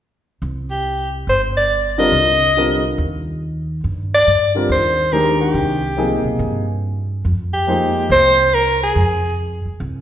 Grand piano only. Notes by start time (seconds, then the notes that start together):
1.98 D3 G3 C4 F4 A#4
2.57 D3 G3 C4 F4 A#4
4.55 D3 G3 C4 F4 A#4
5.12 D#3 G#3 D4 G4 C5
5.97 C3 F3 A#3 D#4 G#4
7.67 F3 G#3 A#3 D#4 C5